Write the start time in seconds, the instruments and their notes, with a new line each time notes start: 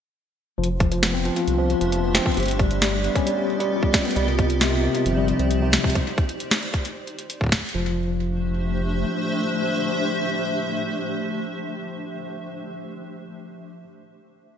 0.58 analog synth bass F1, tine electric piano F3, ambient pad A3
0.64 closed hi-hat
0.69 ambient pad D4
0.80 tine electric piano F3, ambient pad G4, kick, closed hi-hat
0.92 tine electric piano F3, closed hi-hat
1.03 tine electric piano B3, snare, closed hi-hat
1.09 ambient pad E5 C6
1.14 tine electric piano C4
1.25 tine electric piano F3, closed hi-hat
1.36 tine electric piano F4, closed hi-hat
1.47 analog synth bass C2, closed hi-hat
1.59 tine electric piano F3
1.70 closed hi-hat
1.81 analog synth bass F1, tine electric piano F3, closed hi-hat
1.92 tine electric piano F3, closed hi-hat
2.03 tine electric piano B3
2.15 tine electric piano C4, snare, closed hi-hat
2.26 tine electric piano F3, kick
2.32 closed hi-hat
2.34 analog synth bass G1, ambient pad B3, tine electric piano G4, closed hi-hat
2.37 closed hi-hat
2.40 closed hi-hat
2.43 closed hi-hat
2.46 closed hi-hat
2.48 closed hi-hat
2.51 ambient pad F4, closed hi-hat
2.59 tine electric piano G3, kick, closed hi-hat
2.65 ambient pad D#5
2.71 closed hi-hat
2.82 tine electric piano G3, snare, closed hi-hat
2.87 ambient pad A#4
2.93 tine electric piano G3
3.04 tine electric piano B3, closed hi-hat
3.15 tine electric piano C#4, kick, closed hi-hat
3.27 tine electric piano G3, closed hi-hat
3.38 tine electric piano G4
3.60 tine electric piano G3, closed hi-hat
3.83 tine electric piano G3, kick
3.94 tine electric piano G3, kick, snare, closed hi-hat
4.05 tine electric piano B3, closed hi-hat
4.11 closed hi-hat
4.16 analog synth bass C2, tine electric piano G3, ambient pad D#4, closed hi-hat
4.27 tine electric piano C3
4.39 tine electric piano C4, kick, closed hi-hat
4.50 closed hi-hat
4.57 ambient pad C5 D5
4.61 tine electric piano C3, snare, closed hi-hat
4.83 tine electric piano C3
4.95 tine electric piano C3, closed hi-hat
5.06 analog synth bass G1, tine electric piano F3, closed hi-hat
5.17 tine electric piano G3
5.28 tine electric piano C3, closed hi-hat
5.39 analog synth bass C2, tine electric piano C4, closed hi-hat
5.51 closed hi-hat
5.62 tine electric piano C3
5.73 snare
5.84 tine electric piano C3, kick
5.90 closed hi-hat
5.95 kick, closed hi-hat
6.18 kick, closed hi-hat
6.29 closed hi-hat
6.40 closed hi-hat
6.51 snare
6.63 closed hi-hat
6.74 kick, closed hi-hat
6.85 closed hi-hat
7.07 closed hi-hat
7.19 closed hi-hat
7.30 closed hi-hat
7.41 kick
7.44 kick
7.46 kick
7.49 kick, snare, closed hi-hat
7.52 kick
7.55 kick
7.61 kick
7.69 closed hi-hat
7.74 analog synth bass F1, tine electric piano F3, ambient pad A3
7.81 ambient pad D4
7.88 ambient pad G4
7.95 ambient pad C5
8.01 ambient pad E5